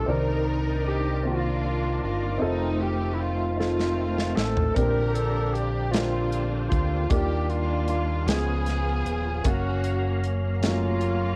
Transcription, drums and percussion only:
3.61 snare soft
3.79 snare soft
4.18 snare medium
4.37 snare medium
4.57 floor tom medium
4.76 kick medium
4.76 closed hi-hat medium
5.15 closed hi-hat soft
5.55 closed hi-hat soft
5.94 snare medium
5.94 closed hi-hat medium
6.32 closed hi-hat soft
6.72 kick medium
6.72 closed hi-hat soft
7.10 kick medium
7.10 closed hi-hat medium
7.50 closed hi-hat soft
7.88 closed hi-hat soft
8.28 snare medium
8.28 closed hi-hat medium
8.66 snare soft
8.66 closed hi-hat soft
9.06 closed hi-hat soft
9.44 kick medium
9.44 closed hi-hat medium
9.84 closed hi-hat soft
10.24 closed hi-hat soft
10.63 snare medium
10.63 closed hi-hat medium
11.01 closed hi-hat soft

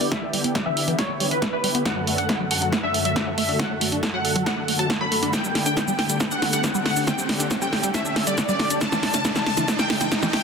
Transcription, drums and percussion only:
0.01 open hi-hat medium
0.12 kick loud
0.12 snare medium
0.12 closed hi-hat medium
0.33 open hi-hat loud
0.44 closed hi-hat medium
0.55 kick loud
0.55 snare medium
0.55 closed hi-hat medium
0.77 open hi-hat loud
0.88 closed hi-hat medium
0.99 kick loud
0.99 snare medium
0.99 closed hi-hat medium
1.20 open hi-hat loud
1.31 closed hi-hat medium
1.42 kick loud
1.42 snare medium
1.42 closed hi-hat medium
1.64 open hi-hat loud
1.75 closed hi-hat medium
1.85 kick loud
1.85 snare medium
1.85 closed hi-hat medium
2.07 open hi-hat loud
2.18 closed hi-hat medium
2.29 kick loud
2.29 snare medium
2.29 closed hi-hat medium
2.51 open hi-hat loud
2.62 closed hi-hat medium
2.72 kick loud
2.72 snare medium
2.72 closed hi-hat medium
2.94 open hi-hat loud
3.05 closed hi-hat medium
3.16 kick loud
3.16 snare medium
3.16 closed hi-hat medium
3.38 open hi-hat loud
3.49 open hi-hat medium
3.59 kick loud
3.59 snare medium
3.59 closed hi-hat medium
3.81 open hi-hat loud
3.92 closed hi-hat medium
4.03 kick loud
4.03 snare medium
4.03 closed hi-hat medium
4.25 open hi-hat loud
4.36 closed hi-hat medium
4.46 kick loud
4.46 snare medium
4.46 closed hi-hat medium
4.68 open hi-hat loud
4.79 closed hi-hat medium
4.90 kick loud
4.90 snare medium
4.90 closed hi-hat medium
5.12 open hi-hat loud
5.23 closed hi-hat medium
5.33 kick loud
5.33 snare medium
5.33 closed hi-hat medium
5.33 shaker medium
5.44 shaker soft
5.55 snare medium
5.55 open hi-hat loud
5.66 closed hi-hat medium
5.66 shaker medium
5.77 kick loud
5.77 snare medium
5.77 closed hi-hat medium
5.77 shaker medium
5.88 shaker soft
5.99 snare medium
5.99 open hi-hat loud
6.10 closed hi-hat medium
6.10 shaker medium
6.20 kick loud
6.20 snare medium
6.20 closed hi-hat medium
6.20 shaker medium
6.31 shaker soft
6.42 snare medium
6.42 open hi-hat loud
6.53 closed hi-hat medium
6.53 shaker medium
6.64 kick loud
6.64 snare medium
6.64 closed hi-hat medium
6.64 shaker medium
6.75 shaker soft
6.86 snare medium
6.86 open hi-hat loud
6.97 open hi-hat medium
6.97 shaker medium
7.07 kick loud
7.07 snare medium
7.07 closed hi-hat medium
7.07 shaker medium
7.18 shaker soft
7.29 snare medium
7.29 open hi-hat loud
7.40 closed hi-hat medium
7.40 shaker medium
7.51 kick loud
7.51 snare medium
7.51 closed hi-hat medium
7.51 shaker medium
7.62 shaker soft
7.73 snare medium
7.73 open hi-hat loud
7.84 closed hi-hat medium
7.84 shaker medium
7.94 kick loud
7.94 snare medium
7.94 closed hi-hat medium
7.94 shaker medium
8.05 shaker soft
8.16 snare medium
8.16 open hi-hat loud
8.27 closed hi-hat medium
8.27 shaker medium
8.38 kick loud
8.38 snare medium
8.38 closed hi-hat medium
8.38 shaker medium
8.49 shaker soft
8.60 snare medium
8.60 open hi-hat loud
8.70 closed hi-hat medium
8.70 shaker medium
8.81 kick loud
8.81 snare medium
8.81 closed hi-hat medium
8.81 shaker medium
8.92 snare medium
8.92 shaker soft
9.03 snare medium
9.03 open hi-hat loud
9.14 snare medium
9.14 closed hi-hat medium
9.14 shaker medium
9.25 kick loud
9.25 snare medium
9.25 closed hi-hat medium
9.25 shaker medium
9.36 snare medium
9.36 shaker soft
9.46 snare loud
9.46 open hi-hat loud
9.57 snare medium
9.57 closed hi-hat medium
9.57 shaker medium
9.68 kick loud
9.68 snare loud
9.68 closed hi-hat medium
9.68 shaker medium
9.79 snare medium
9.79 shaker soft
9.90 snare loud
9.90 open hi-hat loud
10.01 snare medium
10.01 closed hi-hat medium
10.01 shaker medium
10.12 kick loud
10.12 snare loud
10.12 closed hi-hat medium
10.12 shaker medium
10.23 snare medium
10.23 shaker soft
10.33 snare loud
10.33 open hi-hat loud

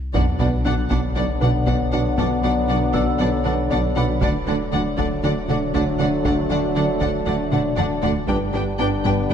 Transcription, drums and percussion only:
0.15 taiko medium
0.91 taiko medium
1.42 taiko mid soft
1.67 taiko medium
1.93 taiko mid soft
2.18 taiko medium
2.94 taiko medium
3.46 taiko mid soft
3.71 taiko medium
3.97 taiko mid medium
4.21 taiko medium
4.98 taiko medium
5.49 taiko mid soft
5.74 taiko medium
6.00 taiko mid medium
6.25 taiko loud
7.01 taiko medium
7.52 taiko mid medium
7.78 taiko low-mid medium
8.03 taiko low medium
8.28 taiko medium
9.05 taiko medium

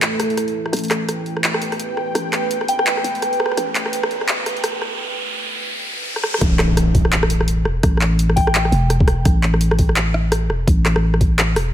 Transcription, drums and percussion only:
0.02 cross-stick soft
0.02 clap loud
0.02 closed hi-hat medium
0.20 cross-stick medium
0.20 closed hi-hat medium
0.30 open hi-hat soft
0.37 cross-stick soft
0.37 closed hi-hat medium
0.48 open hi-hat soft
0.66 cross-stick soft
0.73 cross-stick soft
0.73 closed hi-hat medium
0.77 closed hi-hat medium
0.79 closed hi-hat soft
0.84 closed hi-hat soft
0.88 cross-stick medium
0.88 clap medium
0.88 closed hi-hat soft
0.91 closed hi-hat medium
1.09 cross-stick medium
1.09 closed hi-hat medium
1.26 open hi-hat soft
1.37 cross-stick soft
1.44 clap loud
1.44 closed hi-hat medium
1.54 cross-stick medium
1.62 closed hi-hat medium
1.72 cross-stick medium
1.72 open hi-hat soft
1.80 closed hi-hat medium
1.97 cross-stick soft
2.15 cross-stick medium
2.15 closed hi-hat medium
2.33 cross-stick soft
2.33 clap medium
2.33 closed hi-hat medium
2.51 closed hi-hat medium
2.61 cross-stick medium
2.68 closed hi-hat medium
2.79 cross-stick medium
2.87 clap loud
2.87 closed hi-hat medium
2.97 cross-stick medium
3.04 closed hi-hat medium
3.15 open hi-hat soft
3.22 cross-stick medium
3.22 closed hi-hat medium
3.33 open hi-hat soft
3.40 cross-stick medium
3.46 cross-stick medium
3.52 cross-stick soft
3.57 cross-stick medium
3.57 closed hi-hat medium
3.75 clap medium
3.75 closed hi-hat medium
3.86 cross-stick medium
3.93 closed hi-hat medium
4.03 cross-stick medium
4.11 open hi-hat soft
4.21 cross-stick soft
4.28 clap loud
4.28 closed hi-hat medium
4.46 cross-stick medium
4.46 closed hi-hat medium
4.57 open hi-hat soft
4.64 cross-stick medium
4.64 closed hi-hat medium
4.82 cross-stick medium
6.16 cross-stick medium
6.23 cross-stick medium
6.34 cross-stick medium
6.41 kick loud
6.41 cross-stick medium
6.41 closed hi-hat medium
6.59 cross-stick medium
6.59 clap medium
6.59 open hi-hat soft
6.77 cross-stick medium
6.77 closed hi-hat medium
6.95 kick medium
6.95 open hi-hat medium
7.05 cross-stick medium
7.12 clap loud
7.12 closed hi-hat medium
7.23 cross-stick medium
7.30 closed hi-hat medium
7.41 cross-stick medium
7.48 closed hi-hat medium
7.65 cross-stick medium
7.83 kick loud
7.83 cross-stick medium
7.83 closed hi-hat medium
7.97 cross-stick medium
7.97 clap medium
7.97 open hi-hat soft
8.19 closed hi-hat medium
8.30 cross-stick medium
8.37 kick medium
8.37 open hi-hat medium
8.47 cross-stick medium
8.55 clap loud
8.55 closed hi-hat medium
8.65 cross-stick medium
8.72 open hi-hat medium
8.90 cross-stick medium
8.90 closed hi-hat medium
9.00 kick loud
9.08 cross-stick medium
9.08 closed hi-hat soft
9.25 kick loud
9.25 cross-stick medium
9.25 closed hi-hat medium
9.43 clap medium
9.43 open hi-hat soft
9.54 cross-stick medium
9.61 closed hi-hat medium
9.71 cross-stick medium
9.79 kick medium
9.79 open hi-hat medium
9.89 cross-stick soft
9.96 clap loud
9.96 closed hi-hat medium
10.14 cross-stick medium
10.32 cross-stick medium
10.32 closed hi-hat medium
10.50 cross-stick medium
10.67 kick loud
10.67 closed hi-hat medium
10.86 cross-stick medium
10.86 clap medium
10.86 open hi-hat soft
10.96 cross-stick medium
11.14 cross-stick medium
11.21 kick medium
11.21 open hi-hat medium
11.39 cross-stick medium
11.39 clap loud
11.39 closed hi-hat medium
11.56 cross-stick medium
11.56 open hi-hat medium

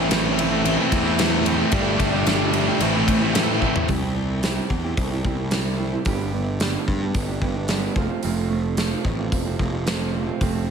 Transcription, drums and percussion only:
0.11 snare loud
0.11 ride loud
0.39 ride medium
0.65 ride medium
0.92 kick medium
0.92 ride medium
1.19 snare loud
1.19 ride loud
1.46 ride medium
1.72 kick loud
1.72 ride medium
2.00 kick medium
2.00 ride medium
2.27 snare loud
2.27 ride loud
2.53 ride medium
2.80 ride loud
3.08 kick medium
3.08 ride medium
3.35 snare loud
3.35 ride loud
3.62 kick medium
3.76 floor tom medium
3.88 kick loud
3.88 open hi-hat medium
4.43 snare medium
4.43 open hi-hat soft
4.70 kick medium
4.97 kick medium
4.97 open hi-hat soft
5.25 kick medium
5.51 snare loud
5.51 open hi-hat medium
6.05 kick loud
6.05 open hi-hat soft
6.60 snare loud
6.60 open hi-hat soft
6.88 kick medium
7.14 kick loud
7.14 open hi-hat soft
7.42 kick medium
7.68 snare loud
7.68 open hi-hat medium
7.96 kick medium
8.23 open hi-hat medium
8.77 snare medium
8.77 open hi-hat medium
9.05 kick medium
9.32 kick medium
9.32 open hi-hat soft
9.59 kick medium
9.87 snare loud
9.87 open hi-hat soft
10.41 kick loud
10.41 open hi-hat soft

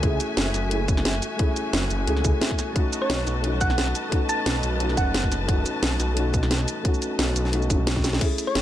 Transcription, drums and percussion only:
0.03 kick loud
0.03 closed hi-hat medium
0.20 closed hi-hat medium
0.20 shaker medium
0.37 snare loud
0.37 closed hi-hat medium
0.54 snare soft
0.54 closed hi-hat medium
0.54 shaker medium
0.71 closed hi-hat medium
0.88 kick loud
0.88 closed hi-hat medium
0.88 shaker medium
0.97 snare medium
1.05 snare loud
1.05 closed hi-hat medium
1.14 snare soft
1.22 closed hi-hat medium
1.22 shaker medium
1.39 kick loud
1.39 closed hi-hat medium
1.56 closed hi-hat medium
1.56 shaker medium
1.73 snare loud
1.73 closed hi-hat medium
1.90 closed hi-hat medium
1.90 shaker medium
2.07 closed hi-hat medium
2.17 snare soft
2.25 kick loud
2.25 closed hi-hat medium
2.25 shaker medium
2.41 snare loud
2.41 closed hi-hat medium
2.51 kick medium
2.51 snare soft
2.59 snare soft
2.59 closed hi-hat medium
2.59 shaker medium
2.76 kick loud
2.76 closed hi-hat medium
2.93 closed hi-hat medium
2.93 shaker medium
3.10 snare loud
3.10 closed hi-hat medium
3.27 snare soft
3.27 closed hi-hat medium
3.27 shaker medium
3.44 closed hi-hat medium
3.61 kick loud
3.61 closed hi-hat medium
3.61 shaker medium
3.70 snare medium
3.78 snare loud
3.78 closed hi-hat medium
3.87 snare soft
3.95 closed hi-hat medium
3.95 shaker medium
4.12 kick loud
4.12 closed hi-hat medium
4.29 closed hi-hat medium
4.29 shaker medium
4.46 snare loud
4.46 closed hi-hat loud
4.63 closed hi-hat medium
4.63 shaker medium
4.80 closed hi-hat medium
4.89 snare soft
4.97 kick loud
4.97 closed hi-hat medium
4.97 shaker medium
5.14 snare loud
5.14 closed hi-hat medium
5.23 kick medium
5.23 snare soft
5.32 snare soft
5.32 closed hi-hat medium
5.32 shaker medium
5.48 kick loud
5.48 closed hi-hat loud
5.66 closed hi-hat medium
5.66 shaker medium
5.83 snare loud
5.83 closed hi-hat loud
6.00 snare soft
6.00 closed hi-hat medium
6.00 shaker medium
6.17 closed hi-hat medium
6.34 kick loud
6.34 closed hi-hat medium
6.34 shaker medium
6.43 snare medium
6.51 snare loud
6.51 closed hi-hat medium
6.60 snare soft
6.68 closed hi-hat medium
6.68 shaker medium
6.85 kick loud
6.85 closed hi-hat loud
6.94 shaker soft
7.02 closed hi-hat medium
7.02 shaker medium
7.19 snare loud
7.19 closed hi-hat loud
7.36 closed hi-hat medium
7.36 shaker medium
7.45 snare soft
7.53 closed hi-hat medium
7.62 shaker soft
7.70 kick loud
7.70 closed hi-hat medium
7.70 shaker medium
7.87 snare loud
7.87 closed hi-hat loud
7.96 kick medium
7.96 snare medium
8.04 snare medium
8.04 closed hi-hat medium
8.04 shaker medium
8.13 snare medium
8.21 kick loud
8.21 closed hi-hat loud
8.21 crash loud
8.38 closed hi-hat medium
8.38 shaker medium
8.55 snare loud
8.55 closed hi-hat loud

